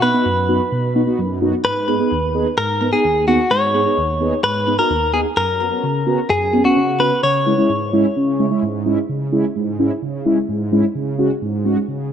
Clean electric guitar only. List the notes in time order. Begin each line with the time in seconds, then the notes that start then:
0.02 B4
1.65 B4
2.58 A#4
2.93 G#4
3.28 F#4
3.51 C#5
4.44 B4
4.79 A#4
5.14 G#4
5.37 A#4
6.30 G#4
6.65 F#4
7.00 B4
7.23 C#5